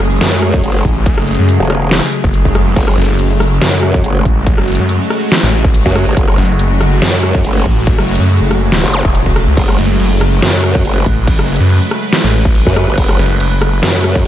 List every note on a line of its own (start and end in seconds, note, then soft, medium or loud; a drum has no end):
0.00 0.20 F#1 loud
0.00 14.28 C#3 medium
0.00 14.28 F#3 medium
0.00 14.28 G#3 medium
0.00 14.28 A3 medium
0.00 2.75 G#4 loud
0.21 0.62 F#2 loud
0.21 cross-stick medium
0.21 snare loud
0.21 closed hi-hat medium
0.42 cross-stick medium
0.42 closed hi-hat medium
0.54 kick loud
0.64 0.83 F#1 loud
0.64 closed hi-hat medium
0.85 1.16 A1 loud
0.85 kick medium
0.85 closed hi-hat medium
1.06 kick loud
1.06 closed hi-hat medium
1.18 1.37 F#1 loud
1.18 cross-stick medium
1.27 closed hi-hat soft
1.31 closed hi-hat medium
1.35 closed hi-hat medium
1.39 1.58 F#2 loud
1.49 closed hi-hat medium
1.60 2.01 E1 loud
1.70 cross-stick medium
1.70 closed hi-hat medium
1.91 snare loud
1.91 closed hi-hat medium
2.03 closed hi-hat soft
2.13 closed hi-hat medium
2.24 2.43 F#1 loud
2.24 kick loud
2.34 closed hi-hat medium
2.45 2.75 F#1 loud
2.45 kick medium
2.55 cross-stick medium
2.55 closed hi-hat medium
2.76 2.96 F#1 loud
2.76 9.56 F#4 medium
2.76 kick loud
2.76 closed hi-hat medium
2.76 crash medium
2.88 cross-stick medium
2.98 3.17 F#1 loud
2.98 closed hi-hat soft
3.02 closed hi-hat medium
3.05 closed hi-hat medium
3.19 3.60 F#1 loud
3.19 closed hi-hat medium
3.40 cross-stick medium
3.40 closed hi-hat medium
3.61 4.02 F#2 loud
3.61 cross-stick medium
3.61 snare loud
3.61 closed hi-hat medium
3.83 cross-stick medium
3.83 closed hi-hat medium
3.94 kick loud
4.04 4.24 F#1 loud
4.04 closed hi-hat medium
4.25 4.56 A1 loud
4.25 kick medium
4.25 closed hi-hat medium
4.47 kick loud
4.47 closed hi-hat medium
4.58 4.78 F#1 loud
4.58 cross-stick medium
4.68 closed hi-hat medium
4.72 closed hi-hat medium
4.75 closed hi-hat medium
4.79 4.99 F#2 loud
4.89 closed hi-hat medium
5.10 cross-stick medium
5.10 closed hi-hat medium
5.32 snare loud
5.32 closed hi-hat medium
5.43 5.84 A1 loud
5.53 closed hi-hat medium
5.64 kick loud
5.74 closed hi-hat medium
5.86 6.05 F#2 loud
5.86 kick medium
5.96 cross-stick medium
5.96 closed hi-hat medium
6.07 6.15 G#1 loud
6.17 6.37 F#1 loud
6.17 kick loud
6.17 closed hi-hat medium
6.28 cross-stick medium
6.38 6.58 F#1 loud
6.38 closed hi-hat soft
6.42 closed hi-hat medium
6.45 closed hi-hat medium
6.59 7.00 F#1 loud
6.59 closed hi-hat medium
6.81 cross-stick medium
6.81 closed hi-hat medium
7.02 7.43 F#2 loud
7.02 cross-stick medium
7.02 snare loud
7.02 closed hi-hat medium
7.23 cross-stick soft
7.23 closed hi-hat medium
7.35 kick loud
7.44 7.64 F#1 loud
7.44 closed hi-hat medium
7.66 7.97 A1 loud
7.66 kick medium
7.66 closed hi-hat medium
7.87 kick loud
7.87 closed hi-hat medium
7.99 8.18 F#1 loud
7.99 cross-stick medium
8.08 closed hi-hat soft
8.12 closed hi-hat medium
8.15 closed hi-hat medium
8.20 8.39 F#2 loud
8.30 closed hi-hat medium
8.41 8.82 F#1 medium
8.51 cross-stick medium
8.51 closed hi-hat medium
8.72 snare loud
8.72 closed hi-hat medium
8.84 9.03 F#1 loud
8.93 closed hi-hat medium
8.93 zap medium
9.05 9.46 E1 loud
9.05 kick loud
9.15 closed hi-hat medium
9.26 kick medium
9.36 cross-stick medium
9.36 closed hi-hat medium
9.47 9.56 C#2 loud
9.57 9.77 F#1 loud
9.57 14.28 B4 medium
9.57 kick loud
9.57 closed hi-hat medium
9.57 crash medium
9.69 cross-stick medium
9.79 9.98 F#1 loud
9.79 closed hi-hat soft
9.82 closed hi-hat medium
9.86 closed hi-hat medium
10.00 10.41 F#1 loud
10.00 closed hi-hat medium
10.00 crash soft
10.21 cross-stick medium
10.21 closed hi-hat medium
10.42 10.83 F#2 medium
10.42 cross-stick medium
10.42 snare loud
10.42 closed hi-hat medium
10.42 crash medium
10.64 cross-stick medium
10.64 closed hi-hat soft
10.75 kick loud
10.85 11.05 F#1 loud
10.85 closed hi-hat medium
10.85 crash soft
11.06 11.37 A1 loud
11.06 kick medium
11.06 closed hi-hat soft
11.27 kick loud
11.27 closed hi-hat medium
11.27 crash medium
11.39 11.58 F#1 loud
11.39 cross-stick medium
11.49 closed hi-hat soft
11.53 closed hi-hat medium
11.56 closed hi-hat medium
11.60 11.80 F#2 loud
11.70 closed hi-hat medium
11.70 crash soft
11.91 cross-stick medium
11.91 closed hi-hat medium
12.13 snare loud
12.13 closed hi-hat medium
12.13 crash medium
12.24 12.65 A1 loud
12.34 closed hi-hat medium
12.45 kick loud
12.55 closed hi-hat medium
12.55 crash soft
12.67 12.86 F#2 loud
12.67 kick medium
12.76 cross-stick medium
12.76 closed hi-hat soft
12.88 12.96 G#1 loud
12.98 13.17 F#1 loud
12.98 kick loud
12.98 closed hi-hat medium
12.98 crash medium
13.09 cross-stick medium
13.19 13.39 F#1 medium
13.19 closed hi-hat soft
13.23 closed hi-hat medium
13.26 closed hi-hat medium
13.40 13.81 F#1 loud
13.40 closed hi-hat medium
13.40 crash medium
13.62 cross-stick medium
13.62 closed hi-hat medium
13.83 14.24 F#2 loud
13.83 cross-stick medium
13.83 snare loud
13.83 closed hi-hat medium
13.83 crash medium
14.04 cross-stick medium
14.04 closed hi-hat medium
14.16 kick loud